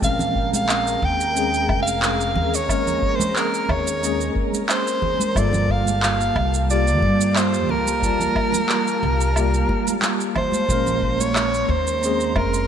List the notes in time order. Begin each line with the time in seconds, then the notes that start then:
0.00 A#1 G#3 C4 C#4 G#4 A#4 A#5, kick, shaker
0.04 A#4 F5
0.19 low conga, shaker
0.36 kick
0.53 F5, high conga, shaker
0.69 clap, low woodblock, shaker
0.87 shaker
1.02 D#2 G5, kick
1.21 shaker
1.33 G#3 C4 C#4, shaker
1.38 G#4
1.54 shaker
1.69 F1, kick, low woodblock
1.82 F5
1.87 shaker
2.02 clap, shaker
2.21 shaker
2.36 D#2, low conga
2.54 C#5, shaker
2.66 G#3 A#3 C#4, kick, low woodblock
2.70 A#4, shaker
2.87 low conga, shaker
3.02 kick
3.16 C5
3.20 high conga, low conga, shaker
3.36 A#4, clap, shaker
3.54 shaker
3.69 D#2 C#5, kick, low woodblock
3.87 shaker
3.99 G#3 A#3 C#4
4.04 G#4, shaker
4.21 shaker
4.36 kick
4.53 high conga, shaker
4.69 C5, clap, low woodblock, shaker
4.87 shaker
5.02 kick, low conga
5.20 high conga, shaker
5.33 G1 G3 A#3 F4 G4 F5 A5, kick, low woodblock
5.37 A4 D5, shaker
5.53 low conga, shaker
5.69 F5, kick
5.86 high conga, shaker
6.03 F5, clap, shaker
6.21 shaker
6.36 C2, kick, low woodblock
6.54 shaker
6.66 G3 A#3 F4
6.70 G4 D5, shaker
6.88 shaker
7.02 G2, kick, muted conga
7.21 shaker
7.36 C5, clap, low woodblock, shaker
7.54 shaker
7.69 C2 A#4, low conga
7.86 muted conga, shaker
8.00 G3 A#3, kick, shaker
8.04 F4 A5
8.20 low conga, shaker
8.36 kick, low woodblock
8.52 high conga, low conga, shaker
8.69 clap, shaker
8.88 shaker
9.03 C2
9.21 shaker
9.32 G3 A#3, low woodblock
9.36 F4 G4, shaker
9.54 shaker
9.69 kick, muted conga
9.87 high conga, shaker
10.02 clap, muted conga, shaker
10.21 shaker
10.35 C5, kick, low conga, low woodblock
10.52 high conga, shaker
10.66 A#1 G#3 A#3 A#5 C6, kick, shaker
10.70 C#4 A#4
10.86 low conga, shaker
11.02 kick
11.20 C#5, high conga, shaker
11.36 clap, low woodblock, shaker
11.54 shaker
11.69 D#2 C5, kick
11.87 shaker
11.99 G#3 C4
12.03 C#4 G#4, shaker
12.21 shaker
12.35 F1 A#4, kick, muted conga, low woodblock
12.54 shaker